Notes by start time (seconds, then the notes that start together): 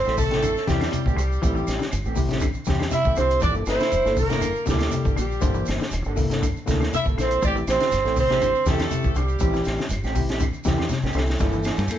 Already playing: C4 C5
0.05 A1 A3 C4 E4 G4 A4, snare, shekere
0.17 C3 A4, kick, open hi-hat, shekere
0.22 A3
0.31 C3 A3 C4 E4 G4 A4, snare, closed hi-hat, shekere
0.42 D3, closed hi-hat, claves, shekere
0.56 snare, shekere
0.67 E2 C3 E3 G3 A3 C4 E4 G4, kick, snare, closed hi-hat, shekere
0.80 D3, snare, closed hi-hat, claves, shekere
0.92 C3, muted fingered electric bass stroke, closed hi-hat, shekere
1.06 A1 A3 C4 G4, kick, shekere
1.16 C2 G3 G4, muted clean electric guitar stroke, closed hi-hat, claves, shekere
1.32 shekere
1.42 A1 E3 A3 C4 E4 G4, kick, closed hi-hat, shekere
1.55 E3, shekere
1.67 A1, snare, closed hi-hat, claves, shekere
1.79 D3, snare, shekere
1.92 G1, closed hi-hat, claves, shekere
2.05 A1 A3 C4 G4, shekere
2.16 C3 C4 E4 G4, kick, open hi-hat, shekere
2.28 C3 A3 C4 G4, snare, closed hi-hat, shekere
2.40 D3, kick, closed hi-hat, claves, shekere
2.53 shekere
2.65 E2 C3 E3 C4 E4 G4, kick, snare, closed hi-hat, shekere
2.79 D3, snare, claves, shekere
2.91 C3 E5, muted fingered electric bass stroke, closed hi-hat, shekere
2.95 E4
3.04 A1 A3 C4 G4, kick, shekere
3.16 C2 D3 C4 E4 G4 C5, closed hi-hat, claves, shekere
3.29 closed hi-hat, shekere
3.40 G1 E3 A#3 D4 D5, kick, closed hi-hat, shekere
3.44 A4
3.55 A#3 E4 A4, shekere
3.66 G1 A#3 E4 A4 C5, snare, closed hi-hat, claves, shekere
3.80 D3, snare, closed hi-hat, shekere
3.91 E1, closed hi-hat, claves, shekere
4.05 G1 A#3 D4 E4 A4, snare, shekere
4.17 C3 A#4, kick, open hi-hat, shekere
4.21 A#3
4.29 C3 A#3 D4 E4 A4, snare, closed hi-hat, shekere
4.41 D3, closed hi-hat, claves, shekere
4.55 shekere
4.66 D2 C3 E3 G3 A#3 D4 E4 G4 A4, kick, snare, closed hi-hat, shekere
4.79 muted clean electric guitar stroke, snare, closed hi-hat, claves, shekere
4.91 C3, closed hi-hat, shekere
5.05 G1 A#3 D4 A4, kick, shekere
5.16 A#1 D3 G3 G4, closed hi-hat, claves, shekere
5.31 shekere
5.40 G1 D3 E3 A#3 D4 E4 A4 C5, kick, closed hi-hat, shekere
5.54 E3, shekere
5.66 G1, snare, closed hi-hat, claves, shekere
5.80 D3, snare, shekere
5.91 E1, closed hi-hat, claves, shekere
6.04 G1 A#3 D4 A4, shekere
6.16 C3 A#3 E4 A4, kick, open hi-hat, shekere
6.30 C3 A#3 D4 A4, snare, closed hi-hat, shekere
6.42 D3, kick, closed hi-hat, claves, shekere
6.56 shekere
6.66 D2 C3 E3 A#3 D4 E4 A4, kick, snare, closed hi-hat, shekere
6.81 D3, snare, claves, shekere
6.93 C3 E4 E5, muted fingered electric bass stroke, closed hi-hat, shekere
7.06 G1 A#3 A4, kick, shekere
7.17 A#1 D3 A#3 E4 A4 C5, snare, closed hi-hat, claves, shekere
7.23 C4
7.31 closed hi-hat, shekere
7.42 A1 E3 A3 C4 G4 D5, kick, closed hi-hat, shekere
7.47 G4
7.55 E3 C4 E4 G4, shekere
7.67 A1 C4 E4 G4 C5, snare, closed hi-hat, claves, shekere
7.71 C4
7.80 D3, snare, closed hi-hat, shekere
7.91 G1, snare, closed hi-hat, claves, shekere
8.04 A1 A3 C4 E4 G4 A4, snare, shekere
8.16 C3 C4 C5, kick, open hi-hat, shekere
8.30 C3 A3 C4 E4 G4, snare, closed hi-hat, shekere
8.41 D3, closed hi-hat, claves, shekere
8.55 shekere
8.65 E2 C3 E3 A3 C4 E4 G4 A4, kick, snare, closed hi-hat, shekere
8.70 A3
8.79 D3, snare, closed hi-hat, claves, shekere
8.91 C3, muted fingered electric bass stroke, closed hi-hat, shekere
9.03 A1 A3 C4 G4, kick, shekere
9.15 C2 D3 G4, closed hi-hat, claves, shekere
9.19 G3
9.28 shekere
9.39 A1 E3 C4 E4 G4, muted clean electric guitar stroke, kick, closed hi-hat, shekere
9.53 E3, snare, shekere
9.64 A1, snare, closed hi-hat, claves, shekere
9.78 D3, snare, shekere
9.89 G1, closed hi-hat, shekere
9.93 claves
10.04 A1 A3 C4 G4, snare, shekere
10.15 C3 C4 E4 G4, kick, open hi-hat, shekere
10.29 A3 C4 G4, snare, closed hi-hat, shekere
10.40 D3, kick, closed hi-hat, claves, shekere
10.53 shekere
10.64 E2 C3 E3 A3 C4 E4 G4, kick, snare, closed hi-hat, shekere
10.77 D3, snare, claves, shekere
10.89 C3, muted fingered electric bass stroke, snare, shekere
11.02 A1 A3 C4 G4, snare, shekere
11.12 C2 D3 C4 E4, shekere
11.17 A4, snare, claves
11.26 snare, shekere
11.39 G1 E3 G3 A#3 D4 E4 A4, kick, snare, ride bell, shekere
11.52 E3, shekere
11.63 E3 A#3 D4 A4, snare, ride bell, claves, shekere
11.76 G2, snare, ride bell, shekere
11.88 A#3 E4 A4, ride bell, claves, shekere